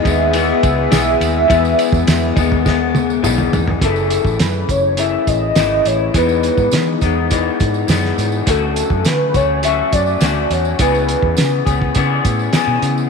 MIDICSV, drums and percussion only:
0, 0, Header, 1, 2, 480
1, 0, Start_track
1, 0, Key_signature, 4, "major"
1, 0, Tempo, 580833
1, 1234, Time_signature, 4, 2, 24, 8
1, 10822, End_track
2, 0, Start_track
2, 0, Title_t, "Drums"
2, 42, Note_on_c, 9, 36, 94
2, 44, Note_on_c, 9, 51, 49
2, 58, Note_on_c, 9, 54, 50
2, 125, Note_off_c, 9, 36, 0
2, 127, Note_off_c, 9, 51, 0
2, 141, Note_off_c, 9, 54, 0
2, 276, Note_on_c, 9, 51, 78
2, 287, Note_on_c, 9, 54, 45
2, 358, Note_off_c, 9, 51, 0
2, 369, Note_off_c, 9, 54, 0
2, 522, Note_on_c, 9, 51, 61
2, 523, Note_on_c, 9, 36, 105
2, 527, Note_on_c, 9, 54, 49
2, 605, Note_off_c, 9, 51, 0
2, 606, Note_off_c, 9, 36, 0
2, 610, Note_off_c, 9, 54, 0
2, 757, Note_on_c, 9, 51, 68
2, 761, Note_on_c, 9, 38, 118
2, 765, Note_on_c, 9, 54, 95
2, 839, Note_off_c, 9, 51, 0
2, 844, Note_off_c, 9, 38, 0
2, 847, Note_off_c, 9, 54, 0
2, 1001, Note_on_c, 9, 51, 67
2, 1008, Note_on_c, 9, 54, 48
2, 1084, Note_off_c, 9, 51, 0
2, 1090, Note_off_c, 9, 54, 0
2, 1238, Note_on_c, 9, 36, 122
2, 1242, Note_on_c, 9, 51, 78
2, 1244, Note_on_c, 9, 54, 51
2, 1321, Note_off_c, 9, 36, 0
2, 1325, Note_off_c, 9, 51, 0
2, 1327, Note_off_c, 9, 54, 0
2, 1362, Note_on_c, 9, 54, 33
2, 1445, Note_off_c, 9, 54, 0
2, 1476, Note_on_c, 9, 51, 61
2, 1483, Note_on_c, 9, 54, 47
2, 1559, Note_off_c, 9, 51, 0
2, 1566, Note_off_c, 9, 54, 0
2, 1591, Note_on_c, 9, 36, 94
2, 1604, Note_on_c, 9, 54, 32
2, 1673, Note_off_c, 9, 36, 0
2, 1687, Note_off_c, 9, 54, 0
2, 1714, Note_on_c, 9, 51, 90
2, 1719, Note_on_c, 9, 54, 81
2, 1720, Note_on_c, 9, 38, 120
2, 1797, Note_off_c, 9, 51, 0
2, 1801, Note_off_c, 9, 54, 0
2, 1803, Note_off_c, 9, 38, 0
2, 1956, Note_on_c, 9, 36, 98
2, 1956, Note_on_c, 9, 51, 48
2, 1961, Note_on_c, 9, 54, 45
2, 2038, Note_off_c, 9, 36, 0
2, 2039, Note_off_c, 9, 51, 0
2, 2044, Note_off_c, 9, 54, 0
2, 2081, Note_on_c, 9, 36, 87
2, 2164, Note_off_c, 9, 36, 0
2, 2197, Note_on_c, 9, 54, 47
2, 2199, Note_on_c, 9, 36, 86
2, 2205, Note_on_c, 9, 38, 55
2, 2279, Note_off_c, 9, 54, 0
2, 2281, Note_off_c, 9, 36, 0
2, 2288, Note_off_c, 9, 38, 0
2, 2436, Note_on_c, 9, 48, 79
2, 2443, Note_on_c, 9, 54, 43
2, 2518, Note_off_c, 9, 48, 0
2, 2525, Note_off_c, 9, 54, 0
2, 2563, Note_on_c, 9, 54, 25
2, 2645, Note_off_c, 9, 54, 0
2, 2676, Note_on_c, 9, 47, 83
2, 2679, Note_on_c, 9, 54, 96
2, 2759, Note_off_c, 9, 47, 0
2, 2762, Note_off_c, 9, 54, 0
2, 2795, Note_on_c, 9, 45, 73
2, 2878, Note_off_c, 9, 45, 0
2, 2918, Note_on_c, 9, 54, 42
2, 2920, Note_on_c, 9, 43, 107
2, 3001, Note_off_c, 9, 54, 0
2, 3002, Note_off_c, 9, 43, 0
2, 3037, Note_on_c, 9, 43, 107
2, 3120, Note_off_c, 9, 43, 0
2, 3153, Note_on_c, 9, 36, 102
2, 3155, Note_on_c, 9, 42, 93
2, 3157, Note_on_c, 9, 54, 46
2, 3235, Note_off_c, 9, 36, 0
2, 3238, Note_off_c, 9, 42, 0
2, 3239, Note_off_c, 9, 54, 0
2, 3271, Note_on_c, 9, 54, 27
2, 3353, Note_off_c, 9, 54, 0
2, 3392, Note_on_c, 9, 42, 71
2, 3398, Note_on_c, 9, 54, 43
2, 3474, Note_off_c, 9, 42, 0
2, 3480, Note_off_c, 9, 54, 0
2, 3509, Note_on_c, 9, 36, 80
2, 3526, Note_on_c, 9, 54, 27
2, 3591, Note_off_c, 9, 36, 0
2, 3609, Note_off_c, 9, 54, 0
2, 3632, Note_on_c, 9, 42, 94
2, 3637, Note_on_c, 9, 54, 66
2, 3638, Note_on_c, 9, 38, 108
2, 3714, Note_off_c, 9, 42, 0
2, 3720, Note_off_c, 9, 38, 0
2, 3720, Note_off_c, 9, 54, 0
2, 3874, Note_on_c, 9, 36, 84
2, 3877, Note_on_c, 9, 42, 57
2, 3880, Note_on_c, 9, 54, 44
2, 3957, Note_off_c, 9, 36, 0
2, 3960, Note_off_c, 9, 42, 0
2, 3963, Note_off_c, 9, 54, 0
2, 4109, Note_on_c, 9, 42, 89
2, 4117, Note_on_c, 9, 54, 42
2, 4192, Note_off_c, 9, 42, 0
2, 4199, Note_off_c, 9, 54, 0
2, 4358, Note_on_c, 9, 36, 87
2, 4358, Note_on_c, 9, 42, 69
2, 4358, Note_on_c, 9, 54, 39
2, 4440, Note_off_c, 9, 36, 0
2, 4440, Note_off_c, 9, 54, 0
2, 4441, Note_off_c, 9, 42, 0
2, 4591, Note_on_c, 9, 42, 70
2, 4596, Note_on_c, 9, 38, 112
2, 4596, Note_on_c, 9, 54, 92
2, 4674, Note_off_c, 9, 42, 0
2, 4678, Note_off_c, 9, 38, 0
2, 4678, Note_off_c, 9, 54, 0
2, 4836, Note_on_c, 9, 54, 38
2, 4839, Note_on_c, 9, 42, 76
2, 4919, Note_off_c, 9, 54, 0
2, 4921, Note_off_c, 9, 42, 0
2, 5077, Note_on_c, 9, 36, 100
2, 5077, Note_on_c, 9, 42, 86
2, 5077, Note_on_c, 9, 54, 45
2, 5159, Note_off_c, 9, 36, 0
2, 5159, Note_off_c, 9, 54, 0
2, 5160, Note_off_c, 9, 42, 0
2, 5196, Note_on_c, 9, 54, 30
2, 5278, Note_off_c, 9, 54, 0
2, 5315, Note_on_c, 9, 54, 43
2, 5318, Note_on_c, 9, 42, 67
2, 5398, Note_off_c, 9, 54, 0
2, 5401, Note_off_c, 9, 42, 0
2, 5434, Note_on_c, 9, 36, 77
2, 5434, Note_on_c, 9, 54, 28
2, 5516, Note_off_c, 9, 36, 0
2, 5517, Note_off_c, 9, 54, 0
2, 5549, Note_on_c, 9, 54, 70
2, 5559, Note_on_c, 9, 42, 89
2, 5565, Note_on_c, 9, 38, 114
2, 5632, Note_off_c, 9, 54, 0
2, 5641, Note_off_c, 9, 42, 0
2, 5648, Note_off_c, 9, 38, 0
2, 5795, Note_on_c, 9, 54, 44
2, 5800, Note_on_c, 9, 36, 84
2, 5803, Note_on_c, 9, 42, 48
2, 5878, Note_off_c, 9, 54, 0
2, 5882, Note_off_c, 9, 36, 0
2, 5885, Note_off_c, 9, 42, 0
2, 6036, Note_on_c, 9, 54, 43
2, 6039, Note_on_c, 9, 42, 82
2, 6045, Note_on_c, 9, 36, 83
2, 6119, Note_off_c, 9, 54, 0
2, 6122, Note_off_c, 9, 42, 0
2, 6127, Note_off_c, 9, 36, 0
2, 6279, Note_on_c, 9, 54, 42
2, 6284, Note_on_c, 9, 36, 93
2, 6287, Note_on_c, 9, 42, 70
2, 6362, Note_off_c, 9, 54, 0
2, 6367, Note_off_c, 9, 36, 0
2, 6370, Note_off_c, 9, 42, 0
2, 6397, Note_on_c, 9, 54, 25
2, 6480, Note_off_c, 9, 54, 0
2, 6513, Note_on_c, 9, 54, 83
2, 6521, Note_on_c, 9, 42, 74
2, 6525, Note_on_c, 9, 38, 105
2, 6595, Note_off_c, 9, 54, 0
2, 6603, Note_off_c, 9, 42, 0
2, 6608, Note_off_c, 9, 38, 0
2, 6651, Note_on_c, 9, 38, 31
2, 6734, Note_off_c, 9, 38, 0
2, 6761, Note_on_c, 9, 54, 40
2, 6766, Note_on_c, 9, 42, 70
2, 6844, Note_off_c, 9, 54, 0
2, 6849, Note_off_c, 9, 42, 0
2, 6875, Note_on_c, 9, 54, 31
2, 6957, Note_off_c, 9, 54, 0
2, 6997, Note_on_c, 9, 54, 48
2, 6998, Note_on_c, 9, 42, 92
2, 7000, Note_on_c, 9, 36, 103
2, 7080, Note_off_c, 9, 54, 0
2, 7081, Note_off_c, 9, 42, 0
2, 7082, Note_off_c, 9, 36, 0
2, 7241, Note_on_c, 9, 42, 64
2, 7241, Note_on_c, 9, 54, 43
2, 7323, Note_off_c, 9, 42, 0
2, 7324, Note_off_c, 9, 54, 0
2, 7356, Note_on_c, 9, 36, 81
2, 7439, Note_off_c, 9, 36, 0
2, 7475, Note_on_c, 9, 54, 68
2, 7482, Note_on_c, 9, 42, 98
2, 7488, Note_on_c, 9, 38, 109
2, 7558, Note_off_c, 9, 54, 0
2, 7565, Note_off_c, 9, 42, 0
2, 7571, Note_off_c, 9, 38, 0
2, 7721, Note_on_c, 9, 36, 82
2, 7721, Note_on_c, 9, 42, 55
2, 7721, Note_on_c, 9, 54, 42
2, 7804, Note_off_c, 9, 36, 0
2, 7804, Note_off_c, 9, 42, 0
2, 7804, Note_off_c, 9, 54, 0
2, 7957, Note_on_c, 9, 54, 41
2, 7958, Note_on_c, 9, 42, 85
2, 8040, Note_off_c, 9, 42, 0
2, 8040, Note_off_c, 9, 54, 0
2, 8201, Note_on_c, 9, 54, 40
2, 8203, Note_on_c, 9, 42, 67
2, 8204, Note_on_c, 9, 36, 98
2, 8283, Note_off_c, 9, 54, 0
2, 8285, Note_off_c, 9, 42, 0
2, 8287, Note_off_c, 9, 36, 0
2, 8317, Note_on_c, 9, 54, 21
2, 8399, Note_off_c, 9, 54, 0
2, 8434, Note_on_c, 9, 54, 86
2, 8439, Note_on_c, 9, 42, 80
2, 8443, Note_on_c, 9, 38, 102
2, 8517, Note_off_c, 9, 54, 0
2, 8521, Note_off_c, 9, 42, 0
2, 8526, Note_off_c, 9, 38, 0
2, 8681, Note_on_c, 9, 54, 39
2, 8682, Note_on_c, 9, 42, 71
2, 8764, Note_off_c, 9, 54, 0
2, 8765, Note_off_c, 9, 42, 0
2, 8799, Note_on_c, 9, 54, 31
2, 8882, Note_off_c, 9, 54, 0
2, 8916, Note_on_c, 9, 42, 91
2, 8919, Note_on_c, 9, 36, 106
2, 8926, Note_on_c, 9, 54, 48
2, 8999, Note_off_c, 9, 42, 0
2, 9002, Note_off_c, 9, 36, 0
2, 9009, Note_off_c, 9, 54, 0
2, 9046, Note_on_c, 9, 54, 29
2, 9128, Note_off_c, 9, 54, 0
2, 9161, Note_on_c, 9, 42, 67
2, 9167, Note_on_c, 9, 54, 41
2, 9244, Note_off_c, 9, 42, 0
2, 9249, Note_off_c, 9, 54, 0
2, 9276, Note_on_c, 9, 36, 80
2, 9359, Note_off_c, 9, 36, 0
2, 9393, Note_on_c, 9, 54, 72
2, 9401, Note_on_c, 9, 42, 86
2, 9407, Note_on_c, 9, 38, 105
2, 9476, Note_off_c, 9, 54, 0
2, 9484, Note_off_c, 9, 42, 0
2, 9490, Note_off_c, 9, 38, 0
2, 9640, Note_on_c, 9, 36, 90
2, 9642, Note_on_c, 9, 54, 43
2, 9643, Note_on_c, 9, 42, 50
2, 9723, Note_off_c, 9, 36, 0
2, 9724, Note_off_c, 9, 54, 0
2, 9726, Note_off_c, 9, 42, 0
2, 9765, Note_on_c, 9, 36, 75
2, 9847, Note_off_c, 9, 36, 0
2, 9872, Note_on_c, 9, 42, 81
2, 9873, Note_on_c, 9, 54, 42
2, 9881, Note_on_c, 9, 36, 87
2, 9955, Note_off_c, 9, 42, 0
2, 9955, Note_off_c, 9, 54, 0
2, 9964, Note_off_c, 9, 36, 0
2, 10121, Note_on_c, 9, 36, 91
2, 10121, Note_on_c, 9, 42, 70
2, 10124, Note_on_c, 9, 54, 40
2, 10204, Note_off_c, 9, 36, 0
2, 10204, Note_off_c, 9, 42, 0
2, 10206, Note_off_c, 9, 54, 0
2, 10242, Note_on_c, 9, 54, 25
2, 10324, Note_off_c, 9, 54, 0
2, 10352, Note_on_c, 9, 42, 76
2, 10357, Note_on_c, 9, 38, 102
2, 10359, Note_on_c, 9, 54, 90
2, 10435, Note_off_c, 9, 42, 0
2, 10439, Note_off_c, 9, 38, 0
2, 10442, Note_off_c, 9, 54, 0
2, 10598, Note_on_c, 9, 42, 75
2, 10601, Note_on_c, 9, 54, 39
2, 10681, Note_off_c, 9, 42, 0
2, 10684, Note_off_c, 9, 54, 0
2, 10723, Note_on_c, 9, 54, 30
2, 10806, Note_off_c, 9, 54, 0
2, 10822, End_track
0, 0, End_of_file